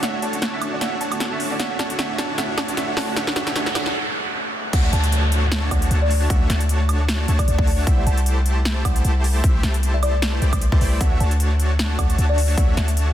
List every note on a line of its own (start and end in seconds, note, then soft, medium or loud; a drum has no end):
0.00 0.13 D3 medium
0.00 1.55 A3 medium
0.00 0.20 A3 medium
0.00 0.14 C#4 medium
0.00 4.69 D4 medium
0.00 0.20 D4 medium
0.00 4.69 E4 medium
0.00 1.57 F#4 medium
0.00 0.20 F#4 medium
0.00 0.14 F#4 medium
0.00 1.57 C#5 medium
0.00 0.20 C#5 medium
0.00 0.20 E5 loud
0.00 0.14 E5 medium
0.00 0.10 F#5 medium
0.00 snare medium
0.00 closed hi-hat medium
0.00 riser medium
0.14 0.19 F#5 medium
0.22 0.80 A3 medium
0.22 0.80 D4 medium
0.22 0.80 F#4 medium
0.22 0.80 C#5 medium
0.22 0.80 A5 medium
0.22 0.35 A5 medium
0.22 closed hi-hat medium
0.32 0.50 D3 medium
0.32 0.50 C#4 medium
0.32 0.50 F#4 medium
0.32 0.51 F#5 medium
0.32 closed hi-hat medium
0.42 snare medium
0.42 closed hi-hat medium
0.52 0.68 D3 medium
0.52 0.69 C#4 medium
0.52 0.69 F#4 medium
0.52 0.69 E5 loud
0.62 closed hi-hat medium
0.62 high woodblock medium
0.71 0.79 D3 medium
0.71 0.79 C#4 medium
0.71 0.80 F#4 medium
0.71 0.80 D5 medium
0.80 0.92 D3 medium
0.80 0.99 A3 medium
0.80 0.92 C#4 medium
0.80 0.99 D4 medium
0.80 0.99 F#4 medium
0.80 0.92 F#4 medium
0.80 0.99 C#5 medium
0.80 0.99 E5 loud
0.80 0.93 E5 medium
0.80 0.88 F#5 medium
0.80 snare medium
0.80 closed hi-hat medium
0.92 0.98 F#5 medium
1.01 1.58 A3 medium
1.01 1.58 D4 medium
1.01 1.58 F#4 medium
1.01 1.58 C#5 medium
1.01 1.58 A5 medium
1.01 1.13 A5 medium
1.01 closed hi-hat medium
1.10 1.28 D3 medium
1.10 1.28 C#4 medium
1.10 1.29 F#4 medium
1.10 1.29 F#5 medium
1.10 closed hi-hat medium
1.10 high woodblock medium
1.20 snare medium
1.20 closed hi-hat medium
1.30 1.47 D3 medium
1.30 1.47 C#4 medium
1.30 1.47 F#4 medium
1.30 1.48 E5 medium
1.40 open hi-hat loud
1.50 1.57 D3 loud
1.50 1.58 C#4 medium
1.50 1.58 F#4 medium
1.50 1.59 D5 loud
1.58 1.70 D3 medium
1.58 1.77 A3 medium
1.58 4.70 A3 medium
1.58 1.71 C#4 medium
1.58 1.77 D4 medium
1.58 1.77 F#4 medium
1.58 1.71 F#4 medium
1.58 4.70 G4 medium
1.58 4.70 B4 medium
1.58 1.77 C#5 medium
1.58 1.77 E5 loud
1.58 1.71 E5 medium
1.58 1.66 F#5 medium
1.58 snare medium
1.58 closed hi-hat medium
1.70 1.76 F#5 medium
1.79 1.97 A3 medium
1.79 1.97 D4 medium
1.79 1.97 F#4 medium
1.79 1.97 C#5 medium
1.79 1.91 A5 medium
1.79 1.97 A5 medium
1.79 snare medium
1.79 closed hi-hat medium
1.89 1.96 D3 medium
1.89 1.97 C#4 medium
1.89 1.97 F#4 medium
1.89 1.98 F#5 medium
1.89 closed hi-hat medium
1.98 2.09 D3 medium
1.98 2.16 A3 medium
1.98 2.10 C#4 medium
1.98 2.16 D4 medium
1.98 2.16 F#4 medium
1.98 2.10 F#4 medium
1.98 2.16 C#5 medium
1.98 2.16 E5 loud
1.98 2.10 E5 medium
1.98 2.06 F#5 medium
1.98 snare medium
1.98 closed hi-hat medium
2.10 2.15 F#5 medium
2.18 2.37 A3 medium
2.18 2.37 D4 medium
2.18 2.37 F#4 medium
2.18 2.37 C#5 medium
2.18 2.37 A5 medium
2.18 2.31 A5 medium
2.18 snare medium
2.18 closed hi-hat medium
2.28 2.35 D3 medium
2.28 2.36 C#4 medium
2.28 2.37 F#4 medium
2.28 2.37 F#5 medium
2.37 2.49 D3 medium
2.37 2.55 A3 medium
2.37 2.49 C#4 medium
2.37 2.55 D4 medium
2.37 2.55 F#4 medium
2.37 2.49 F#4 medium
2.37 2.55 C#5 medium
2.37 2.55 E5 loud
2.37 2.50 E5 medium
2.37 2.45 F#5 medium
2.37 snare medium
2.37 closed hi-hat medium
2.49 2.54 F#5 medium
2.57 2.76 A3 medium
2.57 2.76 D4 medium
2.57 2.76 F#4 medium
2.57 2.76 C#5 medium
2.57 2.76 A5 medium
2.57 2.70 A5 medium
2.57 snare medium
2.57 closed hi-hat medium
2.57 high woodblock medium
2.67 2.74 D3 medium
2.67 2.75 C#4 medium
2.67 2.76 F#4 medium
2.67 2.76 F#5 medium
2.67 closed hi-hat medium
2.76 2.88 D3 medium
2.76 2.95 A3 medium
2.76 2.88 C#4 medium
2.76 2.95 D4 medium
2.76 2.95 F#4 medium
2.76 2.88 F#4 medium
2.76 2.95 C#5 medium
2.76 2.95 E5 loud
2.76 2.89 E5 medium
2.76 2.84 F#5 medium
2.76 snare medium
2.76 closed hi-hat medium
2.88 2.94 F#5 medium
2.96 3.15 A3 medium
2.96 3.15 D4 medium
2.96 3.15 F#4 medium
2.96 3.15 C#5 medium
2.96 3.15 A5 medium
2.96 3.09 A5 medium
2.96 snare medium
2.96 open hi-hat loud
3.07 3.14 D3 medium
3.07 3.15 C#4 medium
3.07 3.15 F#4 medium
3.07 3.16 F#5 medium
3.15 3.27 D3 medium
3.15 3.34 A3 medium
3.15 3.27 C#4 medium
3.15 3.34 D4 medium
3.15 3.34 F#4 medium
3.15 3.28 F#4 medium
3.15 3.34 C#5 medium
3.15 3.34 E5 loud
3.15 3.28 E5 medium
3.15 3.23 F#5 medium
3.15 snare medium
3.15 closed hi-hat medium
3.15 noise sweep medium
3.27 3.33 F#5 medium
3.27 snare medium
3.35 3.47 D3 medium
3.35 3.53 A3 medium
3.35 3.47 C#4 medium
3.35 3.53 D4 medium
3.35 3.53 F#4 medium
3.35 3.47 F#4 medium
3.35 3.54 C#5 medium
3.35 3.53 E5 loud
3.35 3.48 E5 medium
3.35 3.43 F#5 medium
3.35 snare medium
3.35 closed hi-hat medium
3.47 3.52 F#5 medium
3.47 snare medium
3.47 closed hi-hat medium
3.55 3.66 D3 medium
3.55 3.73 A3 medium
3.55 3.67 C#4 medium
3.55 3.73 D4 medium
3.55 3.73 F#4 medium
3.55 3.67 F#4 medium
3.55 3.73 C#5 medium
3.55 3.73 E5 loud
3.55 3.67 E5 medium
3.55 3.63 F#5 medium
3.55 snare loud
3.55 closed hi-hat medium
3.66 3.72 F#5 medium
3.66 snare medium
3.74 3.86 D3 medium
3.74 3.93 A3 medium
3.74 3.86 C#4 medium
3.74 3.93 D4 medium
3.74 3.93 F#4 medium
3.74 3.87 F#4 medium
3.74 3.93 C#5 medium
3.74 3.93 E5 loud
3.74 3.87 E5 medium
3.74 3.82 F#5 medium
3.74 snare loud
3.74 closed hi-hat medium
3.74 high woodblock medium
3.86 3.92 F#5 medium
3.86 snare medium
4.73 4.91 D2 loud
4.73 4.91 A3 medium
4.73 4.91 D4 medium
4.73 4.91 F#4 medium
4.73 4.91 C#5 medium
4.73 4.91 E5 loud
4.73 4.80 F#5 medium
4.73 kick loud
4.73 closed hi-hat medium
4.73 crash loud
4.73 downlifter medium
4.84 4.90 F#5 medium
4.93 5.70 D2 loud
4.93 5.69 A3 medium
4.93 5.69 D4 medium
4.93 5.69 F#4 medium
4.93 5.69 C#5 medium
4.93 5.69 A5 medium
4.93 5.05 A5 medium
4.93 closed hi-hat medium
5.04 closed hi-hat medium
5.12 closed hi-hat medium
5.32 closed hi-hat medium
5.52 snare loud
5.52 closed hi-hat medium
5.71 5.89 D2 medium
5.71 5.89 A3 medium
5.71 5.89 D4 medium
5.71 5.89 F#4 medium
5.71 5.89 C#5 medium
5.71 5.84 F#5 medium
5.71 5.89 A5 loud
5.71 kick medium
5.71 closed hi-hat medium
5.71 high woodblock medium
5.82 closed hi-hat medium
5.91 6.28 D2 loud
5.91 6.28 A3 medium
5.91 6.28 D4 medium
5.91 6.28 F#4 medium
5.91 6.28 C#5 medium
5.91 6.28 A5 loud
5.91 closed hi-hat medium
6.02 6.12 D5 medium
6.11 open hi-hat medium
6.30 6.48 D2 medium
6.30 6.48 A3 medium
6.30 6.48 D4 medium
6.30 6.48 F#4 medium
6.30 6.48 C#5 medium
6.30 6.48 E5 loud
6.30 6.42 F#5 loud
6.30 kick loud
6.30 closed hi-hat medium
6.50 7.26 D2 loud
6.50 7.26 A3 medium
6.50 7.26 D4 medium
6.50 7.26 F#4 medium
6.50 7.26 C#5 medium
6.50 6.62 E5 medium
6.50 7.26 A5 medium
6.50 snare medium
6.50 closed hi-hat medium
6.61 closed hi-hat medium
6.69 closed hi-hat medium
6.89 closed hi-hat medium
6.89 high woodblock medium
7.09 snare loud
7.09 closed hi-hat medium
7.28 7.46 D2 loud
7.28 7.46 A3 medium
7.28 7.46 D4 medium
7.28 7.46 F#4 medium
7.28 7.46 C#5 medium
7.28 7.46 A5 medium
7.28 closed hi-hat medium
7.39 7.45 D5 medium
7.39 kick medium
7.39 closed hi-hat medium
7.39 high woodblock medium
7.48 7.85 D2 loud
7.48 7.85 A3 medium
7.48 7.85 D4 medium
7.48 7.85 F#4 medium
7.48 7.85 C#5 medium
7.48 7.55 D5 medium
7.48 7.85 A5 loud
7.48 closed hi-hat medium
7.59 kick loud
7.67 open hi-hat medium
7.87 8.05 C2 loud
7.87 8.04 E4 medium
7.87 8.04 C5 medium
7.87 7.94 F#5 medium
7.87 kick loud
7.87 closed hi-hat medium
7.98 8.04 F#5 medium
8.06 8.83 C2 loud
8.06 8.83 A3 medium
8.06 8.83 E4 medium
8.06 8.83 G4 medium
8.06 8.83 C5 medium
8.06 8.83 A5 medium
8.06 8.19 A5 medium
8.06 closed hi-hat medium
8.18 closed hi-hat medium
8.26 closed hi-hat medium
8.46 closed hi-hat medium
8.65 snare loud
8.65 closed hi-hat medium
8.85 9.03 C2 medium
8.85 9.02 E4 medium
8.85 9.03 G4 medium
8.85 8.97 F#5 loud
8.85 kick medium
8.85 closed hi-hat medium
8.85 high woodblock medium
8.96 closed hi-hat medium
9.05 9.42 C2 loud
9.05 9.42 A3 medium
9.05 9.42 E4 medium
9.05 9.42 G4 medium
9.05 9.42 C5 medium
9.05 9.42 A5 loud
9.05 closed hi-hat medium
9.24 open hi-hat medium
9.44 9.62 C2 medium
9.44 9.61 A3 medium
9.44 9.61 E4 medium
9.44 9.61 G4 medium
9.44 9.61 C5 medium
9.44 9.61 E5 loud
9.44 kick loud
9.44 closed hi-hat medium
9.63 10.40 C2 loud
9.63 10.40 A3 medium
9.63 10.40 E4 medium
9.63 10.40 G4 medium
9.63 10.40 C5 medium
9.63 10.40 A5 medium
9.63 snare medium
9.63 closed hi-hat medium
9.74 closed hi-hat medium
9.83 closed hi-hat medium
9.94 10.01 E5 medium
10.03 10.15 D5 medium
10.03 closed hi-hat medium
10.03 high woodblock medium
10.22 snare loud
10.22 closed hi-hat medium
10.33 10.44 B4 medium
10.42 10.70 C2 medium
10.42 10.64 A3 medium
10.42 10.64 E4 medium
10.42 10.64 G4 medium
10.42 10.64 C5 medium
10.42 10.64 D5 medium
10.42 closed hi-hat medium
10.53 kick medium
10.53 closed hi-hat medium
10.53 high woodblock medium
10.62 closed hi-hat medium
10.72 10.79 C2 loud
10.72 10.79 A3 medium
10.72 10.79 E4 medium
10.72 10.79 G4 medium
10.72 10.78 B4 medium
10.72 10.79 C5 medium
10.72 10.79 A5 medium
10.72 kick loud
10.81 10.99 C2 loud
10.81 10.99 A3 loud
10.81 10.99 E4 medium
10.81 10.99 G4 medium
10.81 10.88 B4 medium
10.81 10.99 C5 medium
10.81 10.99 D5 loud
10.81 open hi-hat medium
11.01 11.19 D2 medium
11.01 11.18 A3 medium
11.01 11.18 D4 medium
11.01 11.18 E5 loud
11.01 11.08 F#5 medium
11.01 kick loud
11.01 closed hi-hat medium
11.12 11.17 F#5 medium
11.20 11.97 D2 loud
11.20 11.97 A3 medium
11.20 11.97 D4 medium
11.20 11.97 F#4 medium
11.20 11.97 C#5 medium
11.20 11.97 A5 medium
11.20 11.33 A5 medium
11.20 closed hi-hat medium
11.31 closed hi-hat medium
11.40 closed hi-hat medium
11.60 closed hi-hat medium
11.79 snare loud
11.79 closed hi-hat medium
11.99 12.17 D2 loud
11.99 12.16 A3 medium
11.99 12.16 D4 medium
11.99 12.16 F#4 medium
11.99 12.16 C#5 medium
11.99 12.11 F#5 medium
11.99 12.16 A5 loud
11.99 kick medium
11.99 closed hi-hat medium
11.99 high woodblock medium
12.10 closed hi-hat medium
12.18 12.56 D2 loud
12.18 12.55 A3 medium
12.18 12.55 D4 medium
12.18 12.55 F#4 medium
12.18 12.55 C#5 medium
12.18 12.55 A5 loud
12.18 closed hi-hat medium
12.29 12.40 D5 loud
12.38 open hi-hat loud
12.57 12.75 D2 loud
12.57 12.75 A3 medium
12.57 12.75 D4 medium
12.57 12.75 F#4 medium
12.57 12.75 C#5 medium
12.57 12.75 E5 loud
12.57 12.70 F#5 medium
12.57 kick loud
12.57 closed hi-hat medium
12.77 13.13 D2 loud
12.77 13.13 A3 medium
12.77 13.13 D4 medium
12.77 13.13 F#4 medium
12.77 13.13 C#5 medium
12.77 12.89 E5 medium
12.77 13.13 A5 medium
12.77 snare medium
12.77 closed hi-hat medium
12.88 closed hi-hat medium
12.97 closed hi-hat medium